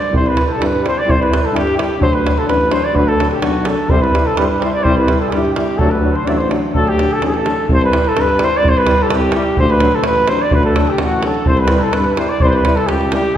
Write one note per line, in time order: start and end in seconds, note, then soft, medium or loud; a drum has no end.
0.00 0.11 D5 medium
0.00 0.12 D5 medium
0.00 davul high soft
0.11 0.37 C2 loud
0.11 0.21 G3 medium
0.11 0.23 E4 medium
0.11 davul low medium
0.16 0.29 C5 medium
0.26 0.44 B4 medium
0.26 0.47 B4 medium
0.26 davul high soft
0.35 0.44 G3 medium
0.35 0.45 E4 medium
0.35 davul high medium
0.44 0.63 A4 medium
0.44 0.50 B4 soft
0.44 0.54 B4 medium
0.49 0.65 A4 medium
0.49 davul high soft
0.57 0.84 G2 medium
0.57 0.67 G3 medium
0.57 0.68 E4 medium
0.61 0.83 B4 medium
0.61 0.85 B4 medium
0.61 davul high medium
0.75 davul high soft
0.81 0.91 G3 medium
0.81 0.92 E4 medium
0.81 1.00 C5 medium
0.86 1.00 C5 medium
0.86 davul high medium
0.98 1.12 D5 medium
0.98 1.11 D5 medium
1.03 1.32 C2 loud
1.03 1.13 G3 medium
1.03 1.16 E4 medium
1.09 1.25 C5 medium
1.09 1.22 C5 medium
1.09 davul low loud
1.21 1.47 B4 medium
1.21 1.48 B4 medium
1.21 davul high soft
1.29 1.39 G3 medium
1.29 1.40 E4 medium
1.33 davul high medium
1.45 1.57 A4 medium
1.45 1.58 A4 medium
1.45 davul high soft
1.52 1.78 G2 medium
1.52 1.62 G3 medium
1.52 1.62 E4 medium
1.52 1.77 G4 medium
1.56 1.78 G4 medium
1.56 davul high medium
1.67 davul high soft
1.76 1.86 G3 medium
1.76 1.86 E4 medium
1.76 1.99 G4 medium
1.76 2.00 G4 medium
1.76 davul high medium
1.99 2.25 D2 medium
1.99 2.09 F#3 medium
1.99 2.09 D4 medium
1.99 2.16 C5 medium
1.99 2.14 C5 loud
1.99 davul low loud
2.13 2.40 B4 medium
2.13 davul high soft
2.23 2.33 F#3 medium
2.23 2.33 D4 medium
2.23 davul high medium
2.38 2.49 A4 medium
2.38 2.48 A4 medium
2.38 davul high soft
2.46 2.73 A1 medium
2.46 2.56 F#3 medium
2.46 2.57 D4 medium
2.46 2.74 B4 medium
2.46 davul high medium
2.61 davul high soft
2.70 2.80 F#3 medium
2.70 2.80 D4 medium
2.70 2.86 C5 medium
2.70 davul high medium
2.84 2.97 D5 medium
2.84 2.99 D5 medium
2.93 3.20 D2 loud
2.93 3.03 F#3 medium
2.93 3.04 D4 medium
2.93 3.10 B4 loud
2.93 3.13 B4 medium
2.93 davul low medium
3.08 3.30 A4 medium
3.08 3.32 A4 medium
3.08 davul high soft
3.18 3.27 F#3 medium
3.18 3.28 D4 medium
3.18 davul high medium
3.31 3.44 G4 medium
3.31 3.48 G4 medium
3.31 davul high soft
3.41 3.68 B1 medium
3.41 3.51 F#3 medium
3.41 3.51 D4 medium
3.41 3.68 F#4 medium
3.41 davul high medium
3.47 3.70 F#4 medium
3.65 3.74 F#3 medium
3.65 3.75 D4 medium
3.65 3.92 A4 medium
3.65 davul high medium
3.78 davul high soft
3.88 4.15 C2 loud
3.88 3.99 G3 medium
3.88 4.00 E4 medium
3.88 4.02 C5 medium
3.88 4.04 C5 medium
3.88 davul low loud
4.01 4.27 B4 medium
4.01 4.28 B4 medium
4.01 davul high soft
4.14 4.23 G3 medium
4.14 4.23 E4 medium
4.14 davul high medium
4.26 4.39 A4 medium
4.26 davul high soft
4.36 4.62 G2 medium
4.36 4.46 G3 medium
4.36 4.48 E4 medium
4.36 4.44 B4 medium
4.36 4.47 B4 medium
4.36 davul high medium
4.42 4.49 C5 medium
4.42 4.51 C5 medium
4.48 4.62 B4 medium
4.48 4.64 B4 medium
4.48 davul high soft
4.58 4.68 G3 medium
4.58 4.72 C5 medium
4.62 4.72 E4 medium
4.62 4.72 C5 medium
4.62 davul high medium
4.73 4.85 D5 medium
4.73 4.86 D5 medium
4.83 5.10 C2 loud
4.83 4.92 G3 medium
4.83 4.95 C5 loud
4.83 4.95 C5 medium
4.83 davul low medium
4.87 4.96 E4 medium
4.96 5.17 B4 medium
4.96 5.18 B4 medium
4.96 davul high soft
5.07 5.17 G3 medium
5.07 5.18 E4 medium
5.07 davul high medium
5.18 5.30 A4 medium
5.18 5.32 A4 medium
5.22 davul high soft
5.28 5.58 G2 medium
5.28 5.41 G3 medium
5.28 5.53 G4 medium
5.28 5.54 G4 medium
5.28 davul high medium
5.36 5.45 E4 medium
5.45 davul high soft
5.54 5.64 G3 medium
5.54 5.65 E4 medium
5.54 5.78 G4 medium
5.54 5.80 G4 medium
5.54 davul high medium
5.77 6.05 D2 loud
5.77 5.88 F#3 medium
5.77 5.89 D4 medium
5.77 5.92 A4 medium
5.77 davul low medium
5.90 6.14 B4 medium
5.90 6.18 B4 medium
5.90 davul high soft
6.03 6.12 F#3 medium
6.03 6.12 D4 medium
6.12 6.28 C5 medium
6.12 davul high soft
6.16 6.29 C5 medium
6.25 6.52 A1 medium
6.25 6.37 F#3 medium
6.25 6.35 D4 medium
6.25 6.31 D5 medium
6.25 davul high medium
6.29 6.39 D5 medium
6.29 6.34 E5 medium
6.29 6.32 E5 medium
6.38 6.50 C5 medium
6.38 davul high soft
6.50 6.60 F#3 medium
6.50 6.59 D4 medium
6.50 davul high medium
6.73 6.99 D2 medium
6.73 6.85 F#3 medium
6.73 6.83 D4 medium
6.73 6.88 A4 medium
6.73 6.90 A4 medium
6.73 davul low medium
6.86 7.12 G4 medium
6.86 7.15 G4 medium
6.86 davul high soft
6.97 7.07 F#3 medium
6.97 7.08 D4 medium
6.97 davul high medium
7.10 7.21 A4 medium
7.10 7.23 A4 medium
7.10 davul high soft
7.20 7.47 A1 medium
7.20 7.30 F#3 medium
7.20 7.31 D4 medium
7.20 davul high medium
7.24 7.67 A4 medium
7.34 davul high soft
7.45 7.54 F#3 medium
7.45 7.55 D4 soft
7.45 davul high medium
7.69 7.95 C2 loud
7.69 davul low medium
7.73 7.82 C5 loud
7.81 8.09 B4 loud
7.81 davul high soft
7.91 8.01 G3 medium
7.91 8.03 E4 medium
7.91 davul high medium
8.04 8.22 A4 medium
8.04 davul high soft
8.16 8.42 G2 medium
8.16 davul high medium
8.20 8.46 B4 loud
8.29 davul high soft
8.37 8.47 G3 medium
8.37 8.50 E4 medium
8.37 davul high medium
8.44 8.58 C5 loud
8.57 8.71 D5 loud
8.62 8.88 C2 medium
8.62 davul low medium
8.69 8.79 C5 loud
8.77 9.04 B4 loud
8.77 davul high soft
8.84 8.94 G3 medium
8.84 8.96 E4 medium
8.84 davul high medium
8.98 davul high soft
9.02 9.10 G4 medium
9.02 9.06 A4 medium
9.09 9.36 C2 medium
9.09 9.34 G4 medium
9.09 9.14 A4 medium
9.09 davul high medium
9.22 davul high soft
9.32 9.44 G3 medium
9.32 9.43 E4 medium
9.32 9.56 G4 medium
9.32 davul high medium
9.57 9.83 D2 loud
9.57 9.72 C5 loud
9.57 davul low medium
9.70 9.97 B4 loud
9.70 davul high soft
9.80 9.90 F#3 medium
9.80 9.91 D4 medium
9.80 davul high medium
9.92 10.05 A4 medium
9.92 davul high soft
10.04 10.31 A1 medium
10.04 10.30 B4 loud
10.04 davul high medium
10.16 davul high soft
10.28 10.38 F#3 medium
10.28 10.39 D4 medium
10.28 10.44 C5 medium
10.28 davul high medium
10.42 10.55 D5 medium
10.51 10.78 D2 loud
10.51 10.64 B4 loud
10.51 10.65 B4 medium
10.51 davul low loud
10.63 10.91 A4 medium
10.63 10.92 A4 medium
10.63 davul high soft
10.75 10.85 F#3 medium
10.75 10.85 D4 medium
10.75 davul high medium
10.87 11.04 G4 medium
10.87 11.01 G4 medium
10.87 davul high soft
10.98 11.25 A1 medium
10.98 11.24 F#4 medium
10.98 davul high medium
11.03 11.29 F#4 medium
11.12 davul high soft
11.23 11.33 F#3 medium
11.23 11.32 D4 medium
11.23 11.45 A4 medium
11.23 davul high medium
11.27 11.48 A4 medium
11.34 davul high soft
11.46 11.73 C2 loud
11.46 11.60 C5 medium
11.46 11.61 C5 medium
11.46 davul low medium
11.57 11.81 B4 medium
11.57 11.85 B4 medium
11.57 davul high soft
11.68 11.81 G3 medium
11.68 11.79 E4 medium
11.68 davul high medium
11.80 11.94 A4 medium
11.80 11.95 A4 medium
11.80 davul high soft
11.93 12.21 G2 medium
11.93 12.15 B4 medium
11.93 12.18 B4 medium
11.93 davul high medium
12.04 davul high soft
12.16 12.26 G3 medium
12.16 12.26 E4 medium
12.16 12.31 C5 medium
12.16 davul high medium
12.29 12.43 D5 medium
12.29 12.44 D5 medium
12.40 12.67 C2 loud
12.40 12.46 C5 medium
12.40 12.46 C5 loud
12.40 davul low loud
12.44 12.50 B4 medium
12.44 12.55 C5 medium
12.49 12.78 B4 medium
12.49 12.54 C5 loud
12.53 12.80 B4 medium
12.53 davul high soft
12.65 12.75 G3 medium
12.65 12.75 E4 medium
12.65 davul high medium
12.76 12.88 A4 medium
12.76 12.89 A4 medium
12.76 davul high soft
12.87 13.15 C#2 medium
12.87 13.12 G4 medium
12.87 13.11 G4 medium
12.87 davul high medium
13.01 davul high soft
13.11 13.21 G3 medium
13.11 13.22 E4 medium
13.11 13.37 G4 medium
13.11 davul high medium